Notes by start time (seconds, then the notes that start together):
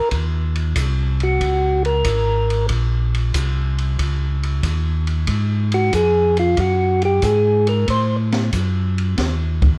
0.11 D#2, kick, ride
0.55 ride
0.75 C2, kick, hi-hat pedal, ride
1.20 F#4, ride
1.40 C#2, kick, ride
1.85 A#4, ride
2.04 G#1, kick, hi-hat pedal, ride
2.50 ride
2.69 A#1, kick, ride
3.14 ride
3.34 C2, kick, hi-hat pedal, ride
3.78 ride
3.99 C#2, kick, ride
4.43 ride
4.63 D#2, kick, hi-hat pedal, ride
5.07 ride
5.27 G#2, kick, ride
5.72 F#4, ride
5.92 F2 G#4, kick, hi-hat pedal, ride
6.37 F4, ride
6.57 F#2 F#4, kick, ride
7.02 G4, ride
7.22 G#2 G#4, kick, hi-hat pedal, ride
7.67 A#4, ride
7.88 A2 C5, kick, ride
8.32 snare, ride
8.52 F#2, kick, hi-hat pedal, ride
8.98 ride
9.17 D#2, kick, snare, ride
9.62 kick, ride